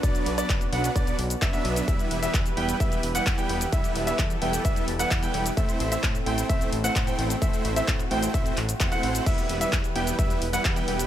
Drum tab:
CC |----------------|----------------|----------------|----------------|
HH |xxoxxxoxxxoxxxox|xxoxxxoxxxoxxxox|xxoxxxoxxxoxxxox|xxoxxxoxxxoxxxox|
SH |xx-xxx-xxx-xxx-x|xx-xxx-xxx-xxx-x|xx-xxx-xxx-xxx-x|xx-xxx-xxx-xxx-x|
CP |----x-------x---|----x-------x---|----x-------x---|----x-------x---|
BD |o---o---o---o---|o---o---o---o---|o---o---o---o---|o---o---o---o---|

CC |----------------|x---------------|
HH |xxoxxxoxxxoxxxox|xxoxxxoxxxoxxxox|
SH |xx-xxx-xxx-xxx-x|xx-xxx-xxx-xxx-x|
CP |----x-----x-x---|----x-------x---|
BD |o---o---o---o---|o---o---o---o---|